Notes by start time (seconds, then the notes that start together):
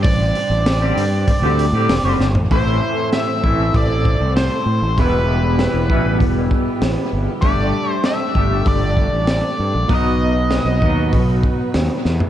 Already playing: G3 C4 D4 G4 C5
0.03 A1 D5, kick, open hi-hat
0.21 muted clean electric guitar stroke
0.35 muted clean electric guitar stroke, open hi-hat
0.50 A1
0.66 muted clean electric guitar stroke, snare, open hi-hat
0.82 D3 G3 C4 G4
0.97 G2, open hi-hat
1.28 muted clean electric guitar stroke, kick, open hi-hat
1.42 D2 D3 G3 C4 G4
1.59 open hi-hat
1.73 A2 D3 G3 C4 G4
1.89 E1, snare, open hi-hat
2.03 F#1 D3 G3 C4 G4
2.19 G1, snare
2.34 A1, floor tom
2.51 A1 A2 E3 A3 C4 E4 A4 C5, kick, open hi-hat
3.13 E5, snare, open hi-hat
3.44 A1 A2 E3 A3 C4 E4, kick
3.74 A1 D5, kick, open hi-hat
4.05 kick
4.20 C2
4.37 C5, snare, open hi-hat
4.66 A2
4.82 A1
4.96 E1 E2 B2 E3 G3 B3 E4 G4 B4, kick, open hi-hat
5.59 snare, open hi-hat
5.74 E1
5.90 A1 E2 B2 E3 G3 B3 E4, kick
6.20 E1, kick, open hi-hat
6.51 kick
6.82 A1, snare, open hi-hat
7.13 G1
7.42 G1 G3 A3 D4 G4 A4 D5, kick, open hi-hat
7.91 C5
8.04 E5, snare, open hi-hat
8.35 G1 G3 A3 D4 G4, kick
8.66 G1 D5, kick, open hi-hat
8.97 kick
9.13 A1
9.27 D5, snare, open hi-hat
9.59 G2
9.75 A#1
9.88 B1 B2 F#3 B3 D#4 F#4 B4, kick, open hi-hat
9.94 D#5
10.51 snare, open hi-hat
10.65 B1
10.82 D#2 B2 F#3 B3 D#4 F#4, kick
11.13 B1, kick, open hi-hat
11.43 kick
11.74 D#2, snare, open hi-hat
12.05 E2, snare
12.20 floor tom